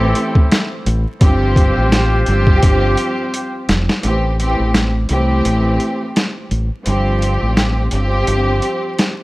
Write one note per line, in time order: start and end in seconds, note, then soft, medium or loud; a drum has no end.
0.00 0.12 A1 medium
0.00 0.76 A2 loud
0.00 0.76 E3 loud
0.00 0.77 C4 loud
0.00 0.81 C4 medium
0.00 0.81 E4 medium
0.00 0.77 G4 loud
0.00 0.81 A4 medium
0.15 closed hi-hat medium
0.35 kick loud
0.51 snare loud
0.51 closed hi-hat loud
0.86 1.04 A1 loud
0.86 closed hi-hat medium
1.20 1.71 G1 loud
1.20 2.19 G2 loud
1.20 2.20 F3 medium
1.20 2.20 C4 medium
1.20 3.64 F4 medium
1.20 3.64 G4 medium
1.20 2.20 G4 loud
1.20 3.64 C5 medium
1.20 kick loud
1.20 closed hi-hat medium
1.56 kick loud
1.56 closed hi-hat medium
1.77 2.22 A1 medium
1.92 snare loud
1.92 closed hi-hat medium
2.26 2.59 G1 medium
2.26 3.74 G2 loud
2.26 3.74 F3 loud
2.26 3.74 C4 loud
2.26 3.75 G4 loud
2.26 closed hi-hat medium
2.47 kick medium
2.63 2.95 G1 medium
2.63 kick medium
2.63 closed hi-hat loud
2.97 closed hi-hat medium
3.34 closed hi-hat loud
3.69 3.87 F1 medium
3.69 snare loud
3.69 closed hi-hat medium
3.89 snare medium
4.02 4.54 A1 loud
4.02 4.36 A2 medium
4.02 4.36 E3 medium
4.02 4.36 C4 medium
4.02 4.36 G4 loud
4.02 closed hi-hat medium
4.38 4.89 A2 loud
4.38 4.90 E3 medium
4.38 4.90 C4 medium
4.38 4.90 G4 loud
4.38 closed hi-hat medium
4.60 5.05 A1 medium
4.75 snare loud
4.75 closed hi-hat medium
5.09 5.42 C2 medium
5.09 6.41 A2 loud
5.09 6.41 E3 loud
5.09 6.41 C4 loud
5.09 6.41 G4 loud
5.09 closed hi-hat medium
5.45 5.77 A1 medium
5.45 closed hi-hat loud
5.80 closed hi-hat medium
6.16 snare loud
6.16 closed hi-hat medium
6.51 6.69 A1 medium
6.51 closed hi-hat medium
6.85 7.36 G1 loud
6.85 7.84 G2 loud
6.85 7.84 F3 medium
6.85 7.85 C4 medium
6.85 7.85 G4 loud
6.85 closed hi-hat medium
7.22 closed hi-hat medium
7.42 7.87 A1 medium
7.57 snare loud
7.57 closed hi-hat medium
7.91 8.24 G1 medium
7.91 9.23 G2 loud
7.91 9.23 F3 medium
7.91 9.23 C4 loud
7.91 9.23 G4 loud
7.91 closed hi-hat medium
8.27 8.59 G1 medium
8.27 closed hi-hat loud
8.62 closed hi-hat medium
8.98 snare loud
8.98 closed hi-hat medium